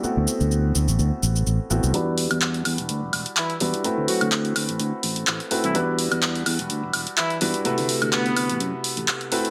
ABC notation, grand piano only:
X:1
M:4/4
L:1/8
Q:"Swing 16ths" 1/4=126
K:Em
V:1 name="Grand piano"
[A,B,CEF]6- [A,B,CEF] [A,B,CEF] | [G,DEFB]6- [G,DEFB] [G,DEFB] | [A,CEFB]6- [A,CEFB] [A,CEFB] | [G,DEFB]6- [G,DEFB] [G,DEFB] |
[C,A,EFB]6- [C,A,EFB] [A,CEFB] |]